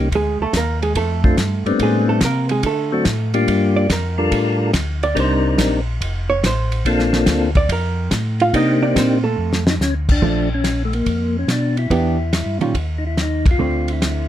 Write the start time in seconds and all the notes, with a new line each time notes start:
Already playing: C2
0.11 D2, kick, ride
0.15 G#3 G#4
0.40 D2 A3 A4
0.53 D#2 A#4, kick, snare, hi-hat pedal, ride
0.57 A#3
0.82 G#3 G#4, ride
0.95 F2 A3 A4, kick, ride
1.24 F3 A3 C4 D4 F4, kick
1.37 G2, kick, snare, hi-hat pedal, ride
1.65 G2 G3 A3 B3 C4 D4, ride
1.79 A2 G#4, kick, ride
1.84 G#3
2.09 A3 A4
2.21 C3, kick, snare, hi-hat pedal, ride
2.25 A#3 A#4
2.49 G#3 G#4, ride
2.63 D3 A3 A4, kick, ride
2.92 F#3 A3 C4 D4 F#4
3.05 A2, kick, snare, hi-hat pedal, ride
3.34 G3 A#3 D4 F4 G4, ride
3.47 G2, kick, ride
3.76 D5
3.89 F2 A#4, kick, snare, hi-hat pedal, ride
4.18 G3 D4 F4 A4 A#4
4.32 A2, kick, ride
4.73 D2, kick, snare, hi-hat pedal, ride
5.03 D5, ride
5.15 C2 G3 C4 D4 D#4 A#4, kick, ride
5.20 C5
5.58 A#1, kick, snare, hi-hat pedal, ride
6.01 F1, kick, ride
6.30 C#5
6.43 A1 C5, kick, snare, hi-hat pedal, ride
6.72 ride
6.85 A#1 A#3 C4 D4 F4 A4, kick, ride
6.99 snare
7.13 snare
7.26 D2, kick, snare, hi-hat pedal, ride
7.55 D5, kick, ride
7.68 F2 A#4, kick, ride
8.11 A2, kick, snare, hi-hat pedal, ride
8.40 F4 F5, ride
8.53 C3 A#3 C4 D4 D#4 G4 D#5, kick, ride
8.82 D4 D5
8.96 A#2 C4 C5, kick, snare, hi-hat pedal, ride
9.24 A3 A4
9.38 F2
9.53 snare
9.67 D#4, snare
9.80 D2 C#4, snare, hi-hat pedal
10.09 D4, kick, crash
10.22 A#1 F3 A3 D4, kick
10.54 C#4
10.64 snare, hi-hat pedal, ride
10.85 A3
10.93 A#3, ride
11.06 F2, kick, ride
11.39 C#4
11.47 B2, snare, hi-hat pedal, ride
11.52 D4
11.77 E4, ride
11.90 E2 E3 B3 D4 G4, kick, ride
12.33 snare, hi-hat pedal, ride
12.46 G2
12.59 A#2 D#3 G3 C#4 F4, ride
12.74 D#2, kick, ride
12.98 D#4
13.07 E4
13.17 snare, hi-hat pedal, ride
13.22 D#4
13.46 kick, ride
13.51 F4
13.58 D2 D3 A3 C4
13.88 ride
13.93 E4
14.02 snare, hi-hat pedal, ride